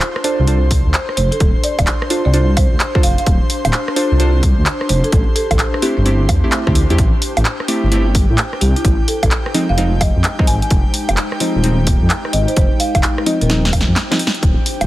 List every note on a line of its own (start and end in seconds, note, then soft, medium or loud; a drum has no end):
0.00 0.21 D4 loud
0.00 9.55 D4 medium
0.00 0.21 F4 loud
0.00 9.55 G4 medium
0.00 0.21 A4 medium
0.00 0.21 C5 loud
0.00 7.00 C5 medium
0.00 9.54 C5 medium
0.00 7.00 C6 medium
0.00 clap loud
0.00 closed hi-hat medium
0.16 cross-stick medium
0.24 0.45 D4 medium
0.24 0.45 F4 medium
0.24 0.45 A4 medium
0.24 0.45 C5 medium
0.24 open hi-hat loud
0.39 0.82 C2 medium
0.47 0.59 D4 medium
0.47 0.59 F4 medium
0.47 0.59 A4 medium
0.47 0.59 C5 medium
0.47 closed hi-hat medium
0.71 kick loud
0.71 open hi-hat loud
0.86 0.93 D2 medium
0.94 clap loud
0.94 closed hi-hat medium
1.09 cross-stick medium
1.17 1.30 F1 medium
1.17 1.29 C5 loud
1.17 open hi-hat loud
1.32 1.37 A4 medium
1.32 closed hi-hat soft
1.40 1.53 D1 loud
1.40 kick loud
1.40 closed hi-hat medium
1.64 1.73 D5 medium
1.64 open hi-hat loud
1.79 1.86 D1 loud
1.79 1.84 D5 medium
1.79 kick medium
1.79 closed hi-hat medium
1.79 high bongo medium
1.87 clap loud
1.87 closed hi-hat medium
2.02 cross-stick medium
2.10 2.22 D4 medium
2.10 2.22 F4 medium
2.10 2.22 A4 medium
2.10 2.22 C5 loud
2.10 open hi-hat loud
2.25 2.68 C2 medium
2.25 2.30 D5 medium
2.33 2.50 D4 loud
2.33 2.50 F4 medium
2.33 2.50 A4 loud
2.33 2.50 C5 loud
2.33 2.43 D5 medium
2.33 closed hi-hat medium
2.57 2.73 C5 loud
2.57 kick loud
2.57 open hi-hat loud
2.57 high bongo medium
2.72 2.79 D2 medium
2.80 clap loud
2.80 closed hi-hat medium
2.95 3.01 D4 loud
2.95 3.01 F4 medium
2.95 3.01 A4 medium
2.95 3.01 C5 loud
2.95 kick loud
2.95 cross-stick medium
3.03 3.16 F1 loud
3.03 3.13 F5 medium
3.03 open hi-hat loud
3.18 3.24 F5 medium
3.18 closed hi-hat soft
3.27 3.39 D1 loud
3.27 kick loud
3.27 closed hi-hat medium
3.50 open hi-hat loud
3.65 3.72 D1 loud
3.65 closed hi-hat medium
3.65 high bongo medium
3.73 clap loud
3.73 closed hi-hat medium
3.88 cross-stick medium
3.96 4.17 D4 medium
3.96 4.17 F4 medium
3.96 4.17 A4 medium
3.96 4.18 C5 medium
3.96 open hi-hat loud
4.11 4.54 C2 medium
4.19 4.31 D4 medium
4.19 4.31 F4 medium
4.19 4.31 A4 medium
4.19 4.31 C5 loud
4.19 closed hi-hat medium
4.43 kick loud
4.43 open hi-hat loud
4.58 4.65 D2 medium
4.66 clap loud
4.66 closed hi-hat medium
4.81 cross-stick medium
4.89 5.02 F1 medium
4.89 5.01 C5 loud
4.89 open hi-hat loud
5.04 5.09 A4 medium
5.04 closed hi-hat soft
5.12 5.25 A1 medium
5.12 5.22 A4 medium
5.12 kick loud
5.12 closed hi-hat medium
5.36 5.45 A4 medium
5.36 open hi-hat loud
5.51 5.58 A1 loud
5.51 5.56 A4 medium
5.51 kick medium
5.51 closed hi-hat medium
5.51 high bongo medium
5.59 clap loud
5.59 closed hi-hat medium
5.74 cross-stick medium
5.82 5.94 A3 medium
5.82 5.94 C4 medium
5.82 5.94 E4 medium
5.82 5.94 G4 loud
5.82 open hi-hat loud
5.97 6.30 G1 medium
5.97 6.02 D4 medium
6.05 6.22 A3 loud
6.05 6.22 C4 loud
6.05 6.15 D4 medium
6.05 6.22 E4 medium
6.05 6.22 G4 loud
6.05 closed hi-hat medium
6.29 6.41 E2 loud
6.29 kick loud
6.29 open hi-hat loud
6.29 high bongo medium
6.44 6.63 A3 medium
6.44 6.63 C4 medium
6.44 6.63 E4 medium
6.44 6.63 G4 medium
6.52 clap loud
6.52 closed hi-hat medium
6.67 6.86 D2 medium
6.67 6.79 A3 medium
6.67 6.79 C4 medium
6.67 6.79 E4 medium
6.67 6.79 G4 loud
6.67 kick loud
6.67 cross-stick medium
6.75 open hi-hat loud
6.90 6.97 E2 loud
6.90 7.02 A3 medium
6.90 7.02 C4 medium
6.90 7.02 E4 medium
6.90 7.02 G4 medium
6.90 closed hi-hat soft
6.98 7.11 A1 medium
6.98 14.41 G4 medium
6.98 14.41 G5 medium
6.98 kick loud
6.98 closed hi-hat medium
7.22 open hi-hat loud
7.37 7.44 A1 medium
7.37 closed hi-hat medium
7.37 high bongo medium
7.45 clap loud
7.45 closed hi-hat medium
7.60 cross-stick medium
7.68 7.90 A3 medium
7.68 7.90 C4 medium
7.68 7.90 E4 medium
7.68 7.90 G4 medium
7.68 open hi-hat loud
7.83 8.26 G1 medium
7.92 8.03 A3 medium
7.92 8.03 C4 medium
7.92 8.03 E4 medium
7.92 8.03 G4 medium
7.92 closed hi-hat medium
8.15 kick loud
8.15 open hi-hat loud
8.30 8.37 A2 medium
8.38 clap loud
8.38 closed hi-hat medium
8.53 cross-stick medium
8.61 8.74 C2 loud
8.61 8.73 G4 medium
8.61 open hi-hat loud
8.76 8.82 E4 medium
8.76 closed hi-hat soft
8.85 8.97 A1 loud
8.85 8.94 E4 medium
8.85 kick loud
8.85 closed hi-hat medium
9.08 9.18 A4 medium
9.08 open hi-hat loud
9.23 9.30 A1 loud
9.23 9.28 A4 medium
9.23 kick medium
9.23 closed hi-hat medium
9.23 high bongo medium
9.31 clap loud
9.31 closed hi-hat medium
9.46 cross-stick medium
9.54 9.66 F3 medium
9.54 9.66 G#3 medium
9.54 9.66 C4 medium
9.54 9.66 D#4 loud
9.54 14.43 D#4 medium
9.54 open hi-hat loud
9.69 10.12 F1 medium
9.69 9.75 F5 medium
9.77 9.95 F3 loud
9.77 9.95 G#3 medium
9.77 9.95 C4 loud
9.77 9.95 D#4 loud
9.77 9.87 F5 medium
9.77 closed hi-hat medium
9.93 14.43 G#3 medium
10.01 10.17 D#5 medium
10.01 kick loud
10.01 open hi-hat loud
10.01 high bongo medium
10.16 10.23 F2 medium
10.24 14.87 C5 medium
10.24 clap loud
10.24 closed hi-hat medium
10.39 10.45 F3 loud
10.39 10.46 G#3 medium
10.39 10.45 C4 medium
10.39 10.46 D#4 loud
10.39 kick loud
10.39 cross-stick medium
10.47 10.60 G#1 loud
10.47 10.57 G#5 medium
10.47 open hi-hat loud
10.62 10.68 G#5 medium
10.62 closed hi-hat soft
10.71 10.83 F1 medium
10.71 kick loud
10.71 closed hi-hat medium
10.94 open hi-hat loud
11.09 11.16 F1 loud
11.09 closed hi-hat medium
11.09 high bongo medium
11.17 clap loud
11.17 closed hi-hat medium
11.32 cross-stick medium
11.40 11.62 F3 medium
11.40 11.62 G#3 medium
11.40 11.62 C4 medium
11.40 11.62 D#4 medium
11.40 open hi-hat loud
11.56 11.98 D#1 medium
11.64 11.75 F3 medium
11.64 11.75 G#3 medium
11.64 11.75 C4 medium
11.64 11.75 D#4 medium
11.64 closed hi-hat medium
11.87 kick loud
11.87 open hi-hat loud
12.02 12.09 F2 medium
12.10 clap loud
12.10 closed hi-hat medium
12.25 cross-stick medium
12.33 12.46 G#1 medium
12.33 12.45 D#5 medium
12.33 open hi-hat loud
12.48 12.54 C5 medium
12.48 closed hi-hat soft
12.56 12.69 F1 loud
12.56 12.66 C5 medium
12.56 kick loud
12.56 closed hi-hat medium
12.80 12.90 F5 medium
12.80 open hi-hat loud
12.95 13.02 F1 loud
12.95 13.00 F5 medium
12.95 kick medium
12.95 closed hi-hat medium
12.95 high bongo medium
13.03 clap loud
13.03 closed hi-hat medium
13.18 cross-stick medium
13.26 13.38 F3 medium
13.26 13.38 G#3 medium
13.26 13.38 C4 medium
13.26 13.38 D#4 loud
13.26 13.38 D#5 loud
13.26 open hi-hat loud
13.41 13.84 D#1 medium
13.41 13.47 A#4 medium
13.41 closed hi-hat soft
13.49 13.66 F3 loud
13.49 13.66 G#3 medium
13.49 13.66 C4 loud
13.49 13.66 D#4 loud
13.49 13.59 A#4 medium
13.49 snare medium
13.49 closed hi-hat medium
13.65 snare medium
13.73 kick loud
13.73 open hi-hat loud
13.73 high bongo medium
13.81 snare medium
13.88 13.95 F2 medium
13.96 snare medium
13.96 clap loud
13.96 closed hi-hat medium
14.11 14.17 F3 loud
14.11 14.17 G#3 medium
14.11 14.17 C4 medium
14.11 14.17 D#4 loud
14.11 snare loud
14.19 open hi-hat loud
14.27 snare loud
14.35 closed hi-hat soft
14.42 14.55 D1 loud
14.42 14.87 D4 medium
14.42 14.87 G4 medium
14.42 14.87 G5 medium
14.42 kick loud
14.42 closed hi-hat medium
14.66 open hi-hat loud
14.81 14.87 D1 loud
14.81 closed hi-hat medium
14.81 high bongo medium